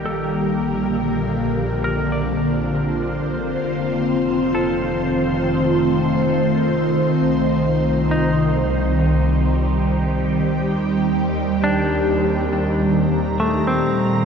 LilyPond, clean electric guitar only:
\new Staff \with { instrumentName = "Clean electric guitar" } { \time 4/4 \key f \mixolydian \tempo 4 = 68 <a' bes'>2 bes'16 d''4.~ d''16~ | d''8. r16 a'2.~ | a'8 r8 ees'2.~ | ees'8 r8 d'2 a16 c'8. | }